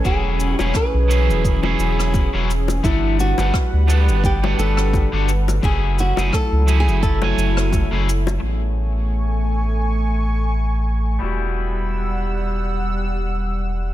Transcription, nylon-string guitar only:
0, 0, Header, 1, 2, 480
1, 0, Start_track
1, 0, Tempo, 697674
1, 36, Time_signature, 4, 2, 24, 8
1, 9589, End_track
2, 0, Start_track
2, 0, Title_t, "Nylon-string guitar"
2, 0, Program_c, 0, 24
2, 41, Note_on_c, 0, 68, 84
2, 406, Note_off_c, 0, 68, 0
2, 406, Note_on_c, 0, 66, 84
2, 522, Note_off_c, 0, 66, 0
2, 524, Note_on_c, 0, 71, 81
2, 1295, Note_off_c, 0, 71, 0
2, 1295, Note_on_c, 0, 69, 81
2, 1693, Note_off_c, 0, 69, 0
2, 1956, Note_on_c, 0, 64, 81
2, 2201, Note_off_c, 0, 64, 0
2, 2204, Note_on_c, 0, 66, 93
2, 2924, Note_off_c, 0, 66, 0
2, 2927, Note_on_c, 0, 67, 97
2, 3145, Note_off_c, 0, 67, 0
2, 3160, Note_on_c, 0, 69, 88
2, 3610, Note_off_c, 0, 69, 0
2, 3887, Note_on_c, 0, 68, 97
2, 4105, Note_off_c, 0, 68, 0
2, 4129, Note_on_c, 0, 66, 92
2, 4361, Note_off_c, 0, 66, 0
2, 4364, Note_on_c, 0, 69, 100
2, 4676, Note_off_c, 0, 69, 0
2, 4678, Note_on_c, 0, 68, 96
2, 4831, Note_off_c, 0, 68, 0
2, 4834, Note_on_c, 0, 69, 96
2, 5527, Note_off_c, 0, 69, 0
2, 9589, End_track
0, 0, End_of_file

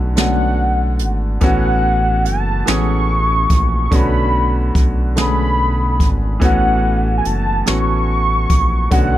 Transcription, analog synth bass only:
0, 0, Header, 1, 2, 480
1, 0, Start_track
1, 0, Key_signature, 3, "major"
1, 0, Tempo, 833333
1, 816, Time_signature, 6, 3, 24, 8
1, 5287, End_track
2, 0, Start_track
2, 0, Title_t, "Analog synth bass"
2, 0, Program_c, 0, 38
2, 0, Note_on_c, 0, 35, 93
2, 581, Note_on_c, 0, 32, 93
2, 590, Note_off_c, 0, 35, 0
2, 795, Note_off_c, 0, 32, 0
2, 818, Note_on_c, 0, 33, 115
2, 1305, Note_on_c, 0, 30, 93
2, 1314, Note_off_c, 0, 33, 0
2, 1518, Note_off_c, 0, 30, 0
2, 1546, Note_on_c, 0, 33, 81
2, 1998, Note_off_c, 0, 33, 0
2, 2021, Note_on_c, 0, 34, 93
2, 2235, Note_off_c, 0, 34, 0
2, 2260, Note_on_c, 0, 35, 108
2, 2715, Note_off_c, 0, 35, 0
2, 2739, Note_on_c, 0, 35, 97
2, 3462, Note_on_c, 0, 32, 101
2, 3470, Note_off_c, 0, 35, 0
2, 3676, Note_off_c, 0, 32, 0
2, 3700, Note_on_c, 0, 33, 113
2, 4155, Note_off_c, 0, 33, 0
2, 4183, Note_on_c, 0, 30, 91
2, 4396, Note_off_c, 0, 30, 0
2, 4427, Note_on_c, 0, 33, 93
2, 4879, Note_off_c, 0, 33, 0
2, 4899, Note_on_c, 0, 34, 99
2, 5114, Note_off_c, 0, 34, 0
2, 5138, Note_on_c, 0, 35, 119
2, 5287, Note_off_c, 0, 35, 0
2, 5287, End_track
0, 0, End_of_file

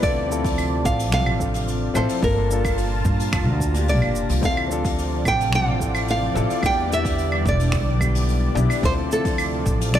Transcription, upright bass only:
0, 0, Header, 1, 2, 480
1, 0, Start_track
1, 0, Key_signature, -1, "minor"
1, 0, Tempo, 550459
1, 23, Time_signature, 4, 2, 24, 8
1, 8715, End_track
2, 0, Start_track
2, 0, Title_t, "Upright bass"
2, 0, Program_c, 0, 32
2, 23, Note_on_c, 0, 38, 100
2, 741, Note_on_c, 0, 33, 93
2, 754, Note_off_c, 0, 38, 0
2, 985, Note_off_c, 0, 33, 0
2, 985, Note_on_c, 0, 36, 102
2, 1109, Note_off_c, 0, 36, 0
2, 1109, Note_on_c, 0, 33, 97
2, 1642, Note_off_c, 0, 33, 0
2, 1700, Note_on_c, 0, 33, 105
2, 1781, Note_off_c, 0, 33, 0
2, 1941, Note_on_c, 0, 31, 99
2, 2661, Note_on_c, 0, 43, 92
2, 2674, Note_off_c, 0, 31, 0
2, 2902, Note_on_c, 0, 29, 97
2, 2915, Note_off_c, 0, 43, 0
2, 3025, Note_off_c, 0, 29, 0
2, 3025, Note_on_c, 0, 38, 95
2, 3506, Note_off_c, 0, 38, 0
2, 3506, Note_on_c, 0, 31, 85
2, 3619, Note_off_c, 0, 31, 0
2, 3619, Note_on_c, 0, 29, 91
2, 3701, Note_off_c, 0, 29, 0
2, 3748, Note_on_c, 0, 36, 90
2, 3825, Note_off_c, 0, 36, 0
2, 3860, Note_on_c, 0, 38, 98
2, 4580, Note_on_c, 0, 33, 90
2, 4593, Note_off_c, 0, 38, 0
2, 4823, Note_off_c, 0, 33, 0
2, 4823, Note_on_c, 0, 36, 99
2, 4946, Note_off_c, 0, 36, 0
2, 4946, Note_on_c, 0, 33, 95
2, 5481, Note_off_c, 0, 33, 0
2, 5541, Note_on_c, 0, 33, 105
2, 5622, Note_off_c, 0, 33, 0
2, 5781, Note_on_c, 0, 40, 98
2, 6501, Note_on_c, 0, 28, 98
2, 6514, Note_off_c, 0, 40, 0
2, 6740, Note_on_c, 0, 38, 93
2, 6753, Note_off_c, 0, 28, 0
2, 6865, Note_off_c, 0, 38, 0
2, 6865, Note_on_c, 0, 35, 97
2, 7400, Note_off_c, 0, 35, 0
2, 7458, Note_on_c, 0, 35, 103
2, 7540, Note_off_c, 0, 35, 0
2, 7704, Note_on_c, 0, 38, 101
2, 8422, Note_on_c, 0, 33, 92
2, 8435, Note_off_c, 0, 38, 0
2, 8663, Note_off_c, 0, 33, 0
2, 8663, Note_on_c, 0, 36, 101
2, 8715, Note_off_c, 0, 36, 0
2, 8715, End_track
0, 0, End_of_file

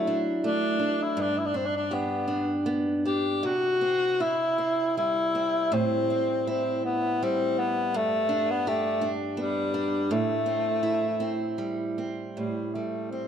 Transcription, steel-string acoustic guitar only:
0, 0, Header, 1, 2, 480
1, 0, Start_track
1, 0, Tempo, 738007
1, 763, Time_signature, 3, 2, 24, 8
1, 1726, Tempo, 769231
1, 3166, Tempo, 750939
1, 4606, Tempo, 722022
1, 7006, Tempo, 765306
1, 8544, End_track
2, 0, Start_track
2, 0, Title_t, "Steel-string acoustic guitar"
2, 0, Program_c, 0, 25
2, 0, Note_on_c, 0, 54, 88
2, 0, Note_on_c, 0, 64, 71
2, 48, Note_on_c, 0, 62, 59
2, 286, Note_on_c, 0, 57, 60
2, 513, Note_off_c, 0, 62, 0
2, 516, Note_on_c, 0, 62, 56
2, 759, Note_on_c, 0, 43, 83
2, 765, Note_off_c, 0, 54, 0
2, 812, Note_off_c, 0, 64, 0
2, 813, Note_off_c, 0, 57, 0
2, 1000, Note_off_c, 0, 62, 0
2, 1002, Note_on_c, 0, 62, 57
2, 1242, Note_on_c, 0, 67, 64
2, 1472, Note_off_c, 0, 62, 0
2, 1480, Note_on_c, 0, 62, 54
2, 1729, Note_on_c, 0, 59, 58
2, 1969, Note_off_c, 0, 62, 0
2, 1976, Note_on_c, 0, 62, 57
2, 2210, Note_off_c, 0, 43, 0
2, 2210, Note_on_c, 0, 48, 71
2, 2262, Note_off_c, 0, 59, 0
2, 2264, Note_off_c, 0, 62, 0
2, 2449, Note_on_c, 0, 60, 55
2, 2689, Note_off_c, 0, 67, 0
2, 2692, Note_on_c, 0, 64, 61
2, 2926, Note_off_c, 0, 60, 0
2, 2929, Note_on_c, 0, 60, 56
2, 3174, Note_on_c, 0, 55, 57
2, 3411, Note_off_c, 0, 60, 0
2, 3413, Note_on_c, 0, 60, 59
2, 3646, Note_off_c, 0, 48, 0
2, 3649, Note_on_c, 0, 45, 77
2, 3893, Note_off_c, 0, 60, 0
2, 3895, Note_on_c, 0, 60, 57
2, 4130, Note_off_c, 0, 64, 0
2, 4133, Note_on_c, 0, 64, 62
2, 4372, Note_off_c, 0, 60, 0
2, 4611, Note_off_c, 0, 55, 0
2, 4614, Note_on_c, 0, 55, 66
2, 5083, Note_off_c, 0, 45, 0
2, 5091, Note_on_c, 0, 43, 92
2, 5132, Note_off_c, 0, 64, 0
2, 5320, Note_on_c, 0, 62, 65
2, 5574, Note_on_c, 0, 67, 74
2, 5794, Note_off_c, 0, 62, 0
2, 5802, Note_on_c, 0, 62, 67
2, 6037, Note_off_c, 0, 55, 0
2, 6040, Note_on_c, 0, 59, 62
2, 6277, Note_off_c, 0, 62, 0
2, 6285, Note_on_c, 0, 62, 64
2, 6526, Note_off_c, 0, 43, 0
2, 6529, Note_on_c, 0, 45, 83
2, 6572, Note_off_c, 0, 59, 0
2, 6574, Note_off_c, 0, 62, 0
2, 6763, Note_on_c, 0, 60, 55
2, 7006, Note_off_c, 0, 67, 0
2, 7008, Note_on_c, 0, 64, 61
2, 7239, Note_off_c, 0, 60, 0
2, 7242, Note_on_c, 0, 60, 57
2, 7480, Note_on_c, 0, 55, 55
2, 7728, Note_off_c, 0, 60, 0
2, 7731, Note_on_c, 0, 60, 51
2, 7968, Note_off_c, 0, 45, 0
2, 7975, Note_on_c, 0, 45, 61
2, 8213, Note_off_c, 0, 55, 0
2, 8216, Note_on_c, 0, 55, 41
2, 8446, Note_off_c, 0, 60, 0
2, 8449, Note_on_c, 0, 60, 42
2, 8544, Note_off_c, 0, 45, 0
2, 8544, Note_off_c, 0, 55, 0
2, 8544, Note_off_c, 0, 60, 0
2, 8544, Note_off_c, 0, 64, 0
2, 8544, End_track
0, 0, End_of_file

